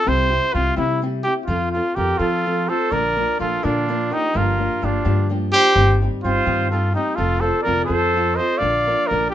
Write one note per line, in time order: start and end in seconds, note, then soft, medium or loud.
0.06 0.38 C2 medium
0.06 0.31 C3 medium
0.06 0.31 G3 medium
0.06 0.30 C4 medium
0.06 0.30 E4 medium
0.06 0.29 G4 medium
0.06 0.55 C5 medium
0.30 0.54 C4 soft
0.30 0.54 E4 soft
0.30 0.53 G4 soft
0.53 0.69 C2 medium
0.53 0.76 G3 medium
0.53 0.76 C4 medium
0.53 0.75 E4 medium
0.53 0.76 F4 medium
0.53 0.75 G4 soft
0.76 1.03 C3 soft
0.76 1.24 C3 medium
0.76 1.01 G3 medium
0.76 1.01 C4 medium
0.76 1.02 E4 medium
0.76 1.00 E4 medium
0.76 1.02 G4 medium
1.02 1.25 G3 medium
1.02 1.25 C4 medium
1.02 1.25 E4 medium
1.02 1.25 G4 medium
1.23 1.47 C4 soft
1.23 1.47 E4 soft
1.23 1.34 G4 medium
1.23 1.48 G4 soft
1.46 1.79 F2 medium
1.46 1.73 F3 medium
1.46 1.74 C4 medium
1.46 1.71 F4 medium
1.46 1.74 F4 medium
1.46 1.73 A4 medium
1.72 1.97 F4 medium
1.72 1.97 F4 soft
1.72 1.97 A4 soft
1.76 1.95 C4 soft
1.95 2.12 F2 medium
1.95 2.19 F3 soft
1.95 2.19 C4 soft
1.95 2.19 F4 medium
1.95 2.19 G4 medium
1.95 2.18 A4 medium
1.95 2.23 A#4 medium
2.18 2.67 F3 medium
2.18 2.45 F3 medium
2.18 2.45 C4 medium
2.18 2.70 F4 medium
2.18 2.45 F4 soft
2.18 2.45 A4 medium
2.18 2.70 A4 medium
2.46 2.69 F3 medium
2.46 2.69 C4 soft
2.46 2.68 F4 soft
2.46 2.67 A4 medium
2.68 2.91 C4 soft
2.68 2.92 F4 soft
2.68 2.92 A4 soft
2.68 2.94 A4 medium
2.68 2.93 C5 medium
2.91 3.24 A#1 medium
2.91 3.17 A#2 soft
2.91 3.18 D3 medium
2.91 3.17 F3 soft
2.91 3.16 A#3 medium
2.91 3.16 D4 medium
2.91 3.15 A#4 medium
2.91 3.39 A#4 medium
2.91 3.41 D5 medium
3.17 3.38 F3 soft
3.17 3.38 A#3 soft
3.17 3.39 D4 soft
3.17 3.39 A#4 soft
3.39 3.56 A#1 medium
3.39 3.62 F3 medium
3.39 3.62 A#3 soft
3.39 3.62 D4 soft
3.39 3.66 F4 medium
3.39 3.66 A4 medium
3.39 3.62 A#4 medium
3.63 3.90 A#2 soft
3.63 4.11 A#2 medium
3.63 3.90 D3 medium
3.63 3.87 F3 medium
3.63 3.87 A#3 soft
3.63 3.88 D4 medium
3.63 4.15 D4 medium
3.63 4.14 F4 medium
3.63 3.88 A#4 medium
3.88 4.11 F3 medium
3.88 4.10 A#3 medium
3.88 4.10 D4 medium
3.88 4.10 A#4 medium
4.11 4.33 F3 soft
4.11 4.33 A#3 soft
4.11 4.34 D4 soft
4.11 4.38 D#4 medium
4.11 4.36 G4 medium
4.11 4.34 A#4 soft
4.33 4.67 G1 medium
4.33 4.60 G2 soft
4.33 4.60 D3 soft
4.33 4.59 F3 medium
4.33 4.58 A#3 medium
4.33 4.58 D4 medium
4.33 4.86 F4 medium
4.33 4.58 G4 medium
4.33 4.85 A#4 medium
4.59 4.81 F3 soft
4.59 4.81 A#3 soft
4.59 4.81 D4 soft
4.59 4.82 G4 soft
4.82 4.98 G1 medium
4.82 5.05 F3 medium
4.82 5.04 A#3 medium
4.82 5.04 D4 medium
4.82 5.29 D4 medium
4.82 5.29 F4 medium
4.82 5.04 G4 medium
5.05 5.51 G2 medium
5.05 5.31 G2 medium
5.05 5.31 D3 soft
5.05 5.28 F3 medium
5.05 5.29 A#3 medium
5.05 5.30 D4 medium
5.05 5.30 G4 medium
5.29 5.53 F3 medium
5.29 5.52 A#3 medium
5.29 5.52 D4 medium
5.29 5.51 G4 medium
5.52 5.75 F3 soft
5.52 5.75 A#3 soft
5.52 5.75 D4 soft
5.52 5.74 G4 soft
5.52 5.97 G4 loud
5.52 5.98 C5 medium
5.75 6.07 G1 medium
5.75 6.01 G2 medium
5.75 6.01 D#3 medium
5.75 6.01 G3 medium
5.75 6.01 C4 medium
5.75 6.01 D#4 medium
5.75 6.00 G4 medium
6.02 6.23 G3 soft
6.02 6.24 C4 soft
6.02 6.24 D#4 soft
6.02 6.24 G4 soft
6.24 6.39 G1 medium
6.24 6.46 G3 medium
6.24 6.45 C4 medium
6.24 6.45 D#4 medium
6.24 6.68 F4 medium
6.24 6.45 G4 medium
6.24 6.68 C5 medium
6.46 6.72 G2 medium
6.46 6.93 G2 medium
6.46 6.72 D#3 medium
6.46 6.70 G3 medium
6.46 6.71 C4 medium
6.46 6.71 D#4 medium
6.46 6.71 G4 medium
6.70 6.94 G3 medium
6.70 6.95 C4 soft
6.70 6.94 D#4 medium
6.70 6.92 F4 medium
6.70 6.93 A4 medium
6.74 6.94 G4 medium
6.93 7.17 G3 soft
6.93 7.17 C4 soft
6.93 7.17 D#4 medium
6.93 7.18 D#4 soft
6.93 7.18 G4 medium
7.15 7.50 F1 medium
7.15 7.44 F3 medium
7.15 7.43 C4 medium
7.15 7.42 F4 medium
7.15 7.42 A4 medium
7.15 7.41 A4 medium
7.41 7.65 C4 soft
7.41 7.65 F4 soft
7.41 7.62 A4 medium
7.41 7.66 A4 medium
7.41 7.61 C5 medium
7.62 7.88 F3 soft
7.62 7.84 A#4 medium
7.62 7.85 D5 medium
7.66 7.82 F1 medium
7.66 7.87 C4 medium
7.66 7.87 F4 medium
7.66 7.86 A4 medium
7.85 8.15 C4 soft
7.85 8.15 F4 medium
7.85 8.38 A4 medium
7.85 8.15 A4 medium
7.85 8.36 C5 medium
7.89 8.37 F2 medium
7.89 8.14 F3 soft
8.15 8.39 F3 soft
8.15 8.38 C4 soft
8.15 8.38 F4 soft
8.15 8.37 A4 soft
8.35 8.61 A4 soft
8.35 8.59 C5 medium
8.35 8.60 D#5 medium
8.39 8.60 C4 soft
8.39 8.60 F4 soft
8.58 8.87 A#2 soft
8.58 8.88 D3 soft
8.58 8.88 F3 soft
8.58 8.87 A#3 medium
8.58 8.87 D4 medium
8.58 8.86 A#4 soft
8.58 9.08 D5 medium
8.58 9.09 F5 medium
8.62 8.94 A#1 medium
8.87 9.09 F3 soft
8.87 9.10 A#3 soft
8.87 9.10 D4 soft
8.87 9.11 A#4 medium
9.07 9.34 F3 soft
9.07 9.29 A#4 medium
9.07 9.31 D5 medium
9.11 9.27 A#1 medium
9.11 9.34 A#3 medium
9.11 9.33 D4 medium
9.11 9.33 A#4 medium
9.30 9.34 G4 medium